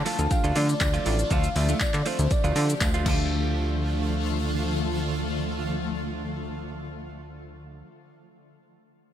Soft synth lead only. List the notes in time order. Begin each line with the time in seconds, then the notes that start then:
0.07 A5
0.32 F5
0.57 D5
0.82 D5
1.32 F5
1.57 E5
1.82 D5
2.07 C5
2.32 D5